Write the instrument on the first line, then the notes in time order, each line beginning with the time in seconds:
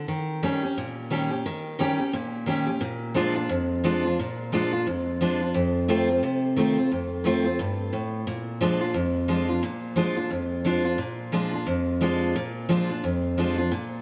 steel-string acoustic guitar
0.08 D#3
0.43 D#3 G3 C#4 G4
0.63 C#4 G4
0.77 A#2
1.10 D#3 G3 C#4 G4
1.31 C#4 G4
1.46 D#3
1.79 D#3 G3 C#4 G4
1.99 C#4 G4
2.13 A#2
2.46 D#3 G3 C#4 G4
2.66 C#4 G4
2.81 A#2
3.14 F3 G#3 D4 F4
3.35 D4 F4
3.49 F2
3.84 F3 G#3 D4 F4
4.05 D4 F4
4.19 A#2
4.52 F3 G#3 D4 F4
4.72 D4 F4
4.87 F2
5.21 F3 G#3 D4 F4
5.41 D4 F4
5.54 F2
5.88 D#3 A3 C4 F4
6.09 C4 F4
6.23 C3
6.56 D#3 A3 C4 F4
6.77 C4 F4
6.91 F2
7.24 D#3 A3 C4 F4
7.44 C4 F4
7.59 G2
7.93 A2
8.27 A#2
8.61 F3 G#3 D4 F4
8.80 D4 F4
8.94 F2
9.28 F3 G#3 D4 F4
9.49 D4 F4
9.63 A#2
9.96 F3 G#3 D4 F4
10.16 D4 F4
10.30 F2
10.64 F3 G#3 D4 F4
10.84 D4 F4
10.98 A#2
11.32 F3 G#3 D4 F4
11.53 D4 F4
11.67 F2
12.01 F3 G#3 D4 F4
12.36 A#2
12.69 F3 G#3 D4 F4
12.90 D4 F4
13.04 F2
13.38 F3 G#3 D4 F4
13.58 D4 F4
13.72 A#2